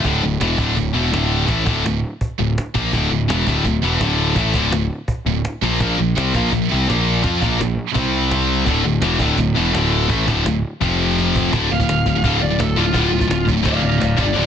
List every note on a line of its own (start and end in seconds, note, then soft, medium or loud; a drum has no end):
0.04 0.22 D1 medium
0.04 0.23 D2 medium
0.04 0.23 A2 medium
0.04 0.23 D3 loud
0.04 cajon bass loud
0.23 0.39 D1 medium
0.23 0.38 D2 medium
0.23 0.39 A2 medium
0.40 0.57 E1 medium
0.40 0.57 E2 loud
0.40 0.58 B2 loud
0.40 0.58 E3 loud
0.40 cajon slap loud
0.58 0.75 D1 medium
0.58 0.74 D2 medium
0.58 0.74 A2 medium
0.58 0.77 D3 loud
0.58 cajon bass loud
0.75 0.94 D1 medium
0.75 0.91 D2 medium
0.75 0.91 A2 medium
0.75 cajon bass medium
0.93 1.11 E1 loud
0.93 1.12 E2 medium
0.93 1.12 B2 medium
0.93 1.12 E3 medium
1.12 1.46 D1 loud
1.12 1.46 D2 medium
1.12 1.45 A2 medium
1.12 1.47 D3 loud
1.12 cajon slap loud
1.47 1.66 A1 medium
1.47 1.64 A2 loud
1.47 1.65 E3 loud
1.47 1.65 A3 loud
1.47 cajon bass loud
1.65 1.83 D1 medium
1.65 1.83 D2 medium
1.65 1.84 A2 loud
1.65 1.84 D3 loud
1.65 cajon bass loud
1.85 2.02 D1 medium
1.85 1.99 D2 medium
1.85 2.00 A2 medium
1.85 cajon slap loud
2.21 cajon bass medium
2.39 2.56 D1 medium
2.39 2.53 D2 medium
2.39 2.54 A2 medium
2.58 cajon slap loud
2.74 2.92 A#1 loud
2.74 2.92 A#2 medium
2.74 2.92 F3 loud
2.74 2.92 A#3 loud
2.74 cajon bass loud
2.93 3.10 D1 loud
2.93 3.09 D2 medium
2.93 3.10 A2 loud
2.93 3.11 D3 loud
2.93 cajon bass medium
3.10 3.28 D1 medium
3.10 3.25 D2 medium
3.10 3.25 A2 medium
3.28 3.46 E1 medium
3.28 3.46 E2 medium
3.28 3.46 B2 medium
3.28 3.47 E3 loud
3.28 cajon slap loud
3.47 3.64 D1 loud
3.47 3.64 D2 medium
3.47 3.65 A2 medium
3.47 3.65 D3 loud
3.47 cajon bass loud
3.65 3.82 D1 medium
3.65 3.80 D2 medium
3.65 3.80 A2 medium
3.65 cajon bass medium
3.83 3.99 E1 medium
3.83 4.00 E2 medium
3.83 4.00 B2 medium
3.83 4.01 E3 loud
4.00 4.34 D1 loud
4.00 4.37 D2 medium
4.00 4.36 A2 loud
4.00 4.37 D3 loud
4.00 cajon slap loud
4.36 4.53 A1 medium
4.36 4.53 A2 loud
4.36 4.54 E3 medium
4.36 4.54 A3 loud
4.36 cajon bass loud
4.54 4.71 D1 medium
4.54 4.72 D2 medium
4.54 4.72 A2 medium
4.54 4.72 D3 loud
4.54 cajon bass loud
4.71 4.89 D1 medium
4.71 4.87 D2 medium
4.71 4.87 A2 medium
4.71 cajon slap loud
5.08 cajon bass medium
5.26 5.43 D1 medium
5.26 5.41 D2 medium
5.26 5.41 A2 medium
5.45 cajon slap loud
5.62 5.79 A#1 loud
5.62 5.80 A#2 medium
5.62 5.80 F3 medium
5.62 5.80 A#3 loud
5.62 cajon slap medium
5.80 5.97 A#1 loud
5.80 5.97 A#2 loud
5.80 5.97 F3 loud
5.80 5.99 A#3 loud
5.80 cajon bass loud
5.98 6.15 A#1 medium
5.98 6.13 A#2 medium
5.98 6.13 F3 medium
6.16 6.33 C2 loud
6.16 6.34 C3 medium
6.16 6.34 G3 loud
6.16 6.34 C4 loud
6.16 cajon slap loud
6.34 6.51 A#1 medium
6.34 6.52 A#2 medium
6.34 6.52 F3 loud
6.34 6.52 A#3 loud
6.34 cajon bass loud
6.52 6.69 A#1 medium
6.52 6.67 A#2 medium
6.52 6.67 F3 medium
6.52 cajon bass medium
6.71 6.88 C2 loud
6.71 6.88 C3 medium
6.71 6.88 G3 loud
6.71 6.89 C4 loud
6.88 7.22 A#1 loud
6.88 7.23 A#2 medium
6.88 7.22 F3 loud
6.88 7.23 A#3 loud
6.88 cajon slap loud
7.23 7.41 F2 loud
7.23 7.40 F3 loud
7.23 7.41 C4 loud
7.23 7.42 F4 loud
7.23 cajon bass loud
7.41 7.59 A#1 loud
7.41 7.57 A#2 medium
7.41 7.58 F3 medium
7.41 7.59 A#3 loud
7.41 cajon bass loud
7.59 7.77 A#1 medium
7.59 7.74 A#2 medium
7.59 7.74 F3 medium
7.59 cajon slap loud
7.94 8.63 C2 medium
7.94 8.65 C3 medium
7.94 8.66 G3 loud
7.94 8.66 C4 loud
7.94 cajon bass loud
8.31 cajon slap loud
8.65 8.84 D1 medium
8.65 8.83 D2 medium
8.65 8.83 A2 loud
8.65 8.84 D3 loud
8.65 cajon bass loud
8.84 9.01 D1 medium
8.84 8.99 D2 medium
8.84 8.99 A2 medium
9.02 9.19 E1 loud
9.02 9.19 E2 loud
9.02 9.20 B2 loud
9.02 9.20 E3 loud
9.02 cajon slap loud
9.20 9.37 D1 loud
9.20 9.37 D2 medium
9.20 9.36 A2 medium
9.20 9.38 D3 loud
9.20 cajon bass loud
9.38 9.55 D1 medium
9.38 9.53 D2 medium
9.38 9.52 A2 medium
9.38 cajon bass medium
9.55 9.73 E1 loud
9.55 9.72 E2 medium
9.55 9.72 B2 medium
9.55 9.73 E3 medium
9.73 10.07 D1 loud
9.73 10.07 D2 medium
9.73 10.07 A2 loud
9.73 10.09 D3 loud
9.73 cajon slap loud
10.08 10.27 A1 loud
10.08 10.25 A2 loud
10.08 10.26 E3 loud
10.08 10.27 A3 loud
10.08 cajon bass medium
10.26 10.45 D1 loud
10.26 10.44 D2 medium
10.26 10.45 A2 loud
10.26 10.45 D3 medium
10.26 cajon bass loud
10.46 10.63 D1 medium
10.46 10.60 D2 medium
10.46 10.60 A2 medium
10.46 cajon slap loud
10.81 11.49 F1 medium
10.81 11.51 F2 medium
10.81 11.52 C3 loud
10.81 11.52 F3 loud
10.81 cajon bass loud
11.18 cajon slap medium
11.36 cajon bass loud
11.52 11.69 D1 loud
11.52 11.69 D2 loud
11.52 11.69 A2 medium
11.52 11.69 D3 loud
11.52 cajon bass loud
11.70 11.86 D1 medium
11.70 11.79 D2 medium
11.70 11.78 A2 medium
11.70 12.40 F5 loud
11.80 11.88 D2 medium
11.80 11.88 A2 medium
11.80 cajon bass medium
11.89 12.04 D1 loud
11.89 12.05 D2 medium
11.89 12.05 A2 loud
11.89 cajon slap loud
12.06 12.21 D1 medium
12.06 12.15 D2 medium
12.06 12.14 A2 medium
12.06 cajon bass medium
12.16 12.23 D2 medium
12.16 12.24 A2 medium
12.24 12.39 D1 medium
12.24 12.40 D2 medium
12.24 12.40 A2 medium
12.24 12.41 D3 loud
12.24 cajon bass loud
12.41 12.57 D1 medium
12.41 12.49 D2 medium
12.41 12.49 A2 medium
12.41 12.59 D5 medium
12.51 12.57 D2 medium
12.51 12.58 A2 medium
12.59 12.75 D1 medium
12.59 12.75 D2 medium
12.59 12.75 A2 loud
12.59 12.77 A4 medium
12.59 cajon slap loud
12.76 12.92 D1 loud
12.76 12.84 D2 medium
12.76 12.85 A2 medium
12.76 12.85 D3 medium
12.76 13.46 F4 loud
12.86 12.91 D2 medium
12.86 12.92 A2 medium
12.93 13.10 D1 loud
12.93 13.10 D2 medium
12.93 13.10 A2 medium
12.93 13.11 D3 loud
12.93 cajon bass loud
13.11 13.28 D1 medium
13.11 13.18 D2 medium
13.11 13.18 A2 medium
13.19 13.26 D2 medium
13.19 13.26 A2 medium
13.19 cajon bass medium
13.27 13.45 D1 loud
13.27 13.45 D2 medium
13.27 13.44 A2 loud
13.27 cajon slap loud
13.45 13.63 D1 medium
13.45 13.52 D2 medium
13.45 13.52 A2 medium
13.45 cajon bass medium
13.53 13.62 D2 medium
13.53 13.62 A2 medium
13.63 13.81 D1 medium
13.63 13.80 D2 medium
13.63 13.80 A2 loud
13.63 13.81 D3 medium
13.63 cajon bass loud
13.67 13.83 D5 medium
13.67 13.84 F5 loud
13.81 13.98 D1 loud
13.81 13.88 D2 medium
13.81 13.88 A2 medium
13.81 14.00 D5 medium
13.85 13.97 D2 medium
13.85 13.97 A2 medium
13.85 14.01 F5 medium
13.98 14.16 D1 medium
13.98 14.15 D2 medium
13.98 14.15 A2 medium
13.98 14.18 D5 medium
13.98 cajon slap loud
14.02 14.19 F5 loud
14.16 14.34 G1 medium
14.16 14.23 G2 loud
14.16 14.23 D3 medium
14.16 14.25 G3 medium
14.16 14.35 F4 medium
14.16 14.35 D5 loud
14.16 cajon bass loud
14.24 14.33 G2 medium
14.24 14.33 D3 medium
14.33 14.46 D1 medium
14.33 14.46 D2 loud
14.33 14.46 A2 loud
14.33 14.46 D3 loud
14.33 14.46 F4 medium
14.33 14.46 D5 medium